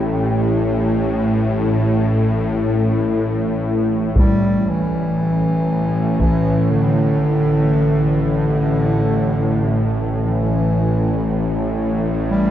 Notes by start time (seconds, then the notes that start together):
Already playing: A1 A2 A3 E4 G4 G5
4.15 A1 A2 G3, taiko
4.69 E3
6.10 A4
6.19 E3, taiko
6.70 D3
7.86 A5
8.23 D3
10.27 E3
12.30 G3